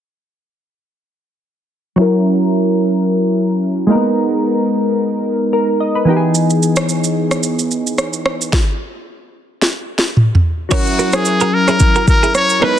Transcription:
1.96 3.84 F#3 medium
1.96 3.85 C#4 medium
1.96 3.86 E4 medium
2.01 3.87 A#4 medium
3.87 5.48 G#3 medium
3.87 3.96 A#3 medium
3.87 5.50 D#4 medium
3.92 5.53 B3 medium
3.92 5.51 A#4 medium
5.53 5.79 A#4 medium
5.80 5.95 D#5 medium
5.95 6.21 B4 medium
6.05 8.21 E3 medium
6.05 8.21 B3 medium
6.05 8.22 D#4 medium
6.10 6.16 G4 medium
6.17 8.26 G#4 medium
6.35 shaker medium
6.50 shaker soft
6.63 shaker medium
6.76 cross-stick loud
6.76 shaker medium
6.89 shaker medium
7.04 shaker medium
7.31 cross-stick medium
7.31 shaker medium
7.43 shaker medium
7.59 shaker soft
7.71 shaker soft
7.87 shaker medium
7.98 cross-stick medium
7.98 shaker medium
8.13 shaker soft
8.26 cross-stick medium
8.41 shaker medium
8.53 kick loud
8.53 snare medium
9.62 snare medium
9.99 snare medium
10.17 mid tom medium
10.35 floor tom medium
10.69 12.57 F#3 medium
10.69 12.58 C#4 medium
10.69 12.59 E4 medium
10.69 11.16 F#4 medium
10.69 10.80 A#4 medium
10.69 10.80 C#5 loud
10.69 kick loud
10.69 crash medium
10.69 shaker medium
10.74 12.60 A#4 medium
10.87 shaker soft
10.99 11.07 F#4 medium
10.99 11.07 A#4 medium
10.99 shaker medium
11.13 11.55 G#4 medium
11.13 cross-stick loud
11.13 shaker medium
11.25 shaker medium
11.40 11.48 F#4 medium
11.40 11.48 A#4 medium
11.40 shaker medium
11.54 12.08 A#4 loud
11.68 11.76 E4 medium
11.68 11.75 G#4 medium
11.68 cross-stick medium
11.68 shaker medium
11.80 kick medium
11.80 shaker medium
11.95 12.03 F#4 medium
11.95 12.02 A#4 medium
11.95 shaker soft
12.08 12.34 A#4 loud
12.08 kick medium
12.08 shaker medium
12.23 12.30 E4 medium
12.23 12.29 G#4 medium
12.23 shaker medium
12.35 12.65 C#5 loud
12.35 cross-stick medium
12.35 shaker medium
12.50 shaker soft
12.60 12.79 G#3 medium
12.60 12.79 B3 medium
12.60 12.79 D#4 medium
12.60 12.71 D#4 medium
12.60 12.71 A#4 medium
12.60 12.79 B4 loud
12.60 cross-stick medium
12.65 12.79 B4 medium

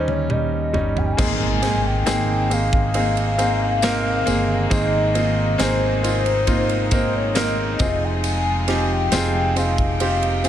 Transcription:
0.00 0.76 D#2 medium
0.00 0.70 A#2 medium
0.00 0.29 G3 medium
0.00 0.30 C#4 medium
0.00 0.30 D#4 medium
0.00 0.11 C5 medium
0.08 0.33 C#5 medium
0.08 high tom medium
0.29 0.71 G3 medium
0.29 0.72 C#4 medium
0.29 0.72 D#4 medium
0.29 1.00 D#5 medium
0.29 mid tom medium
0.73 1.15 G1 medium
0.73 1.16 G3 medium
0.73 1.16 C#4 medium
0.73 1.16 D#4 medium
0.73 floor tom medium
0.97 1.07 G#5 loud
0.97 floor tom medium
1.05 1.14 G5 medium
1.12 1.88 G#5 medium
1.17 2.03 G#1 loud
1.17 2.47 G#2 medium
1.17 7.76 C3 medium
1.17 2.47 D#3 medium
1.17 7.76 D#3 medium
1.17 10.49 G#3 medium
1.17 1.60 A#3 medium
1.17 7.76 A#3 medium
1.17 1.60 C4 medium
1.17 1.60 D#4 medium
1.17 10.49 D#4 medium
1.17 1.60 G#4 loud
1.17 kick loud
1.17 crash medium
1.17 tambourine medium
1.17 impact medium
1.62 2.04 A#3 medium
1.62 2.04 C4 medium
1.62 2.04 D#4 medium
1.62 2.05 G#4 medium
1.62 snare soft
1.62 ride medium
1.62 tambourine soft
1.86 2.54 G5 loud
2.06 4.23 G#1 medium
2.06 2.48 A#3 medium
2.06 2.48 C4 medium
2.06 2.48 D#4 medium
2.06 2.49 G#4 loud
2.06 snare loud
2.06 ride medium
2.06 tambourine medium
2.50 2.92 A#3 medium
2.50 2.92 C4 medium
2.50 2.92 D#4 medium
2.50 2.93 G#4 medium
2.50 4.72 F5 loud
2.50 ride medium
2.50 tambourine soft
2.73 kick medium
2.94 3.36 A#3 medium
2.94 3.37 C4 medium
2.94 3.37 D#4 medium
2.94 3.37 G#4 medium
2.94 ride medium
3.17 ride soft
3.38 3.80 A#3 medium
3.38 3.81 C4 medium
3.38 3.81 D#4 medium
3.38 3.81 G#4 medium
3.38 ride medium
3.38 tambourine soft
3.82 4.24 A#3 loud
3.82 4.25 C4 medium
3.82 4.25 D#4 medium
3.82 4.25 A#4 loud
3.82 snare loud
3.82 ride medium
3.82 tambourine medium
4.26 4.68 G1 medium
4.26 4.68 A#3 medium
4.26 4.69 C4 medium
4.26 4.69 D#4 medium
4.26 4.69 G#4 medium
4.26 ride medium
4.26 tambourine medium
4.70 5.56 G#1 medium
4.70 5.99 G#2 medium
4.70 5.99 D#3 medium
4.70 5.13 A#3 medium
4.70 5.13 C4 medium
4.70 5.13 D#4 medium
4.70 5.13 G#4 loud
4.70 5.63 D#5 loud
4.70 kick loud
4.70 ride medium
4.70 tambourine medium
5.14 5.57 A#3 medium
5.14 5.57 C4 medium
5.14 5.57 D#4 medium
5.14 5.57 F4 medium
5.14 ride medium
5.14 tambourine soft
5.58 7.76 G#1 medium
5.58 6.01 A#3 loud
5.58 6.01 C4 medium
5.58 6.01 D#4 medium
5.58 6.01 G#4 loud
5.58 6.93 C5 loud
5.58 snare loud
5.58 ride medium
5.58 tambourine medium
6.03 6.45 A#3 medium
6.03 6.45 C4 medium
6.03 6.45 D#4 medium
6.03 6.46 F4 medium
6.03 ride medium
6.03 tambourine medium
6.26 ride soft
6.47 6.89 A#3 medium
6.47 6.89 C4 medium
6.47 6.90 D#4 medium
6.47 6.90 F4 medium
6.47 kick medium
6.47 ride medium
6.47 tambourine soft
6.69 ride soft
6.91 7.33 A#3 medium
6.91 7.34 C4 medium
6.91 7.34 D#4 medium
6.91 7.34 A#4 medium
6.91 7.14 C5 medium
6.91 kick loud
6.91 ride medium
6.91 tambourine medium
7.16 7.39 C#5 medium
7.35 7.77 A#3 medium
7.35 7.78 C4 medium
7.35 7.78 D#4 medium
7.35 7.78 A#4 loud
7.35 8.05 D#5 loud
7.35 snare loud
7.35 ride medium
7.35 tambourine medium
7.79 9.08 F1 medium
7.79 10.49 C3 medium
7.79 9.09 C3 medium
7.79 10.49 F3 medium
7.79 8.64 C4 medium
7.79 8.64 D#4 medium
7.79 9.55 F4 medium
7.79 8.64 F4 medium
7.79 8.64 G#4 medium
7.79 kick loud
7.79 ride medium
7.79 tambourine medium
8.04 8.93 G#5 loud
8.24 ride medium
8.24 tambourine medium
8.68 9.10 C4 medium
8.68 9.10 D#4 medium
8.68 9.10 F4 medium
8.68 9.10 G4 medium
8.68 snare soft
8.68 ride medium
8.92 9.59 G5 loud
9.12 10.49 F1 loud
9.12 9.54 C4 loud
9.12 9.54 D#4 medium
9.12 9.55 F4 medium
9.12 9.55 G#4 loud
9.12 snare loud
9.12 ride medium
9.12 tambourine medium
9.56 9.98 C4 medium
9.56 9.99 D#4 medium
9.56 9.99 F4 medium
9.56 9.99 G#4 medium
9.56 10.49 F5 loud
9.56 10.49 G5 medium
9.56 ride medium
9.56 tambourine soft
9.78 kick medium
9.78 ride soft
10.00 10.42 C4 medium
10.00 10.43 D#4 medium
10.00 10.43 F4 medium
10.00 10.43 G4 medium
10.00 ride medium
10.00 tambourine soft
10.23 ride soft
10.44 10.49 C4 medium
10.44 10.49 D#4 medium
10.44 10.49 F4 medium
10.44 10.49 G#4 medium
10.44 ride medium
10.44 tambourine medium

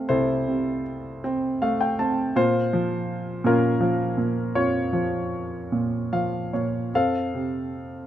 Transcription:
0.00 0.47 C3 soft
0.00 0.82 A3 soft
0.00 1.24 C4 soft
0.00 0.10 A4 soft
0.00 0.09 C5 soft
0.00 1.62 F5 medium
0.09 2.33 C2 medium
0.09 2.33 E4 soft
0.09 2.33 A4 soft
0.09 2.32 C5 medium
0.47 1.96 C3 soft
1.24 1.98 C4 medium
1.62 2.34 A3 soft
1.62 1.80 F5 medium
1.81 1.98 G5 medium
1.99 2.35 C4 medium
1.99 2.33 A5 medium
2.36 3.43 A#2 medium
2.36 3.40 F4 soft
2.36 3.48 C5 medium
2.73 3.79 F3 soft
3.44 4.16 A#2 medium
3.44 4.52 C#4 medium
3.44 4.52 F4 medium
3.44 4.59 A#4 medium
3.80 4.91 F3 soft
4.17 5.68 A#2 soft
4.55 6.89 F2 medium
4.55 6.89 F4 soft
4.55 6.52 C#5 medium
4.93 6.11 F3 soft
5.72 6.52 A#2 soft
6.13 6.91 F3 soft
6.13 6.50 F5 medium
6.53 6.92 A#2 soft
6.53 6.91 C#5 soft
6.94 8.07 F2 soft
6.94 8.07 A4 soft
6.94 8.07 C5 soft
6.94 8.07 F5 medium
7.34 8.07 C3 soft

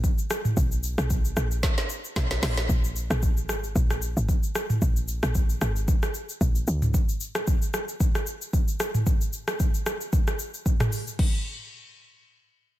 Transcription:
0.04 kick medium
0.04 shaker medium
0.18 shaker medium
0.30 cross-stick loud
0.30 shaker loud
0.45 mid tom medium
0.45 shaker medium
0.57 0.96 B1 loud
0.57 kick loud
0.57 shaker medium
0.72 shaker medium
0.83 shaker medium
0.98 1.35 B1 loud
0.98 cross-stick loud
0.98 shaker medium
1.10 kick medium
1.10 shaker medium
1.25 shaker medium
1.37 1.62 A#1 medium
1.37 cross-stick medium
1.37 shaker medium
1.51 shaker medium
1.63 kick loud
1.63 snare medium
1.63 shaker medium
1.78 snare medium
1.78 shaker medium
1.90 shaker loud
2.04 shaker medium
2.16 2.42 B1 medium
2.16 kick medium
2.16 snare medium
2.16 shaker medium
2.31 snare medium
2.31 shaker medium
2.43 2.68 A#1 medium
2.43 snare loud
2.43 open hi-hat medium
2.43 shaker loud
2.57 snare loud
2.57 shaker medium
2.69 3.09 A#1 loud
2.69 kick loud
2.69 shaker medium
2.84 shaker medium
2.96 shaker medium
3.10 3.50 A#1 loud
3.10 cross-stick loud
3.10 shaker medium
3.23 kick medium
3.23 shaker medium
3.37 shaker medium
3.49 3.74 G#1 loud
3.49 cross-stick medium
3.49 shaker loud
3.64 shaker medium
3.76 4.15 A#1 loud
3.76 kick loud
3.76 shaker medium
3.90 cross-stick medium
3.90 shaker soft
4.02 shaker loud
4.17 4.28 G#1 loud
4.17 shaker medium
4.29 kick medium
4.29 shaker medium
4.43 shaker medium
4.55 cross-stick loud
4.55 shaker loud
4.70 mid tom medium
4.70 shaker medium
4.82 5.21 A#1 loud
4.82 kick loud
4.82 shaker medium
4.96 shaker medium
5.08 shaker loud
5.23 5.60 A#1 loud
5.23 cross-stick loud
5.23 shaker medium
5.35 kick medium
5.35 shaker medium
5.49 shaker medium
5.61 5.87 G#1 loud
5.61 cross-stick medium
5.61 shaker medium
5.76 shaker medium
5.88 kick loud
5.88 shaker medium
6.03 cross-stick medium
6.03 shaker medium
6.14 shaker medium
6.29 shaker medium
6.41 6.66 A#1 loud
6.41 kick medium
6.41 shaker medium
6.55 shaker medium
6.67 6.93 D2 loud
6.67 shaker loud
6.82 mid tom medium
6.82 shaker medium
6.94 kick loud
6.94 shaker medium
7.09 shaker medium
7.21 shaker loud
7.35 cross-stick loud
7.35 shaker medium
7.47 kick loud
7.47 shaker medium
7.62 shaker medium
7.74 cross-stick medium
7.74 shaker medium
7.88 shaker medium
8.00 kick loud
8.00 shaker medium
8.15 cross-stick medium
8.15 shaker soft
8.27 shaker loud
8.42 shaker medium
8.53 kick medium
8.53 shaker medium
8.68 shaker medium
8.80 cross-stick loud
8.80 shaker loud
8.95 mid tom medium
8.95 shaker medium
9.06 kick loud
9.06 shaker medium
9.21 shaker medium
9.33 shaker loud
9.48 cross-stick loud
9.48 shaker medium
9.60 kick medium
9.60 shaker medium
9.74 shaker medium
9.86 cross-stick loud
9.86 shaker medium
10.01 shaker medium
10.13 kick loud
10.13 shaker medium
10.27 cross-stick medium
10.27 shaker soft
10.39 shaker loud
10.54 shaker medium
10.66 kick medium
10.66 shaker medium
10.80 cross-stick loud
10.80 mid tom loud
10.80 shaker medium
10.92 open hi-hat medium
10.92 shaker loud
11.07 shaker medium
11.19 kick loud
11.19 crash medium

